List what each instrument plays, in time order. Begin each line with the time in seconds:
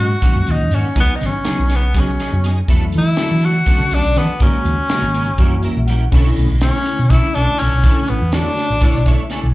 Already playing: fingered electric bass G#2, clean electric guitar C#4 F#4
0.00 clean electric guitar A#3, tenor saxophone F#4
0.22 tine electric piano A#2 F#3 G#3 C#4, clean electric guitar D#3 A#3 C#4 F#4, kick, closed hi-hat
0.35 fingered electric bass F#2
0.47 fingered electric bass D#2, clean electric guitar A#3 C#4 F#4, closed hi-hat
0.51 tenor saxophone D#4
0.60 fingered electric bass D#2
0.71 fingered electric bass G#2, clean electric guitar D#3 A#3 C#4 F#4, tenor saxophone C#4, closed hi-hat
0.85 muted fingered electric bass stroke
0.95 fingered electric bass C#2, tine electric piano C#3 F#3 B3 D#4, clean electric guitar F#3 B3 D#4 G#4, kick, closed hi-hat
1.00 tenor saxophone B3
1.16 tenor saxophone D#4
1.21 fingered electric bass G#1, snare, closed hi-hat
1.26 tenor saxophone C#4
1.44 tine electric piano C#3 F#3 B3 D#4, clean electric guitar F#3 B3 D#4 G#4, muted fingered electric bass stroke, snare, closed hi-hat
1.59 fingered electric bass B1
1.70 clean electric guitar B3 D#4 G#4, snare, closed hi-hat
1.76 tenor saxophone B3
1.94 tine electric piano C#3 F#3 B3 F#4, clean electric guitar F#3 B3 D#4 G#4, kick, snare, closed hi-hat
2.00 tenor saxophone C#4
2.20 clean electric guitar B3 D#4 G#4, snare, closed hi-hat
2.33 fingered electric bass F#2
2.44 clean electric guitar F#3 B3 D#4 G#4, closed hi-hat
2.68 fingered electric bass E2, tine electric piano D3 F#3 A3 E4, clean electric guitar F#3 B3 D4 A4, kick, closed hi-hat
2.92 fingered electric bass E3, closed hi-hat
2.98 tenor saxophone E4
3.17 tine electric piano D3 F#3 A3 F#4, clean electric guitar F#3 B3 D4 A4, snare, closed hi-hat
3.31 fingered electric bass E3
3.42 clean electric guitar B3 D4 A4, tenor saxophone F#4, closed hi-hat
3.66 tine electric piano D3 F#3 A3 C#4, clean electric guitar F#3 B3 D4 A4, muted fingered electric bass stroke, kick, snare, closed hi-hat
3.80 fingered electric bass C#3
3.91 fingered electric bass B1, clean electric guitar B3 D4 A4, tenor saxophone D4, snare, closed hi-hat
4.05 fingered electric bass B1
4.16 fingered electric bass E3, clean electric guitar F#3 B3 D4 A4, tenor saxophone B3, snare, closed hi-hat
4.28 muted fingered electric bass stroke
4.40 fingered electric bass G#1, tine electric piano C#3 G#3 A#3 F#4, clean electric guitar F#3 C#4 D#4 A#4, tenor saxophone C#4, kick, closed hi-hat
4.53 muted fingered electric bass stroke
4.65 fingered electric bass D#2, closed hi-hat
4.89 tine electric piano C#3 G#3 A#3 F#4, clean electric guitar F#3 C#4 D#4 A#4, muted fingered electric bass stroke, snare, closed hi-hat
5.02 fingered electric bass G#1
5.14 clean electric guitar C#4 D#4 A#4, closed hi-hat
5.38 fingered electric bass F#1, tine electric piano E3 G3 A#3 F#4, clean electric guitar G3 C#4 E4 A#4, kick, closed hi-hat
5.63 clean electric guitar C#4 E4 A#4, tine electric piano E5, closed hi-hat
5.77 fingered electric bass A#1
5.87 clean electric guitar G3 C#4 E4 A#4, tine electric piano F#5, closed hi-hat
6.12 fingered electric bass B1, tine electric piano D3 A3 C#4 E4, clean electric guitar D4 E4 A4 C#5, kick, crash
6.36 fingered electric bass B1, closed hi-hat
6.50 fingered electric bass B1
6.61 tine electric piano D3 A3 C#4 E4, tenor saxophone C#4, clean electric guitar D4 E4 A4 C#5, snare, closed hi-hat
6.86 closed hi-hat
6.99 fingered electric bass B2
7.10 tine electric piano D3 A3 C#4 E4, clean electric guitar D4 E4 A4 C#5, tenor saxophone E4, kick, closed hi-hat
7.25 muted fingered electric bass stroke
7.35 fingered electric bass B1, tenor saxophone D4, clean electric guitar E4 A4 C#5, closed hi-hat
7.59 fingered electric bass B1, tenor saxophone C#4, clean electric guitar D4 E4 A4 C#5, closed hi-hat
7.73 fingered electric bass B1
7.83 fingered electric bass A1, tine electric piano D3 A3 C#4 E4, clean electric guitar D4 E4 A4 C#5, kick, closed hi-hat
7.98 muted fingered electric bass stroke
8.08 fingered electric bass A1, tenor saxophone B3, closed hi-hat
8.22 fingered electric bass E2
8.32 tine electric piano D3 A3 F#4 C#5, clean electric guitar D4 E4 A4 C#5, tenor saxophone D4, snare, closed hi-hat
8.57 snare, closed hi-hat
8.70 fingered electric bass A1
8.81 tine electric piano D3 A3 E4 C#5, clean electric guitar D4 E4 A4 C#5, kick, snare, closed hi-hat
8.94 fingered electric bass B1
9.06 clean electric guitar E4 A4 C#5, tine electric piano E5, kick, snare, closed hi-hat
9.30 clean electric guitar D4 E4 A4 C#5, tine electric piano G#5, snare, closed hi-hat
9.43 fingered electric bass B1